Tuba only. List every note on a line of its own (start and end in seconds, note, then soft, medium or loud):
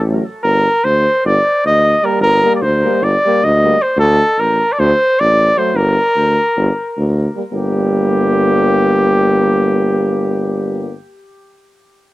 0.00 0.19 A1 loud
0.43 0.66 G1 loud
0.84 1.06 D2 medium
1.25 1.38 G1 loud
1.65 1.95 D2 medium
2.19 2.42 G1 loud
2.61 2.84 D2 medium
3.01 3.14 G1 loud
3.43 3.73 D2 loud
3.97 4.19 D2 loud
4.38 4.61 A1 medium
4.79 4.92 D2 loud
5.20 5.50 A1 loud
5.74 5.97 G1 loud
6.15 6.38 D2 medium
6.57 6.69 G1 loud
6.97 7.27 D2 loud
7.52 10.95 G1 loud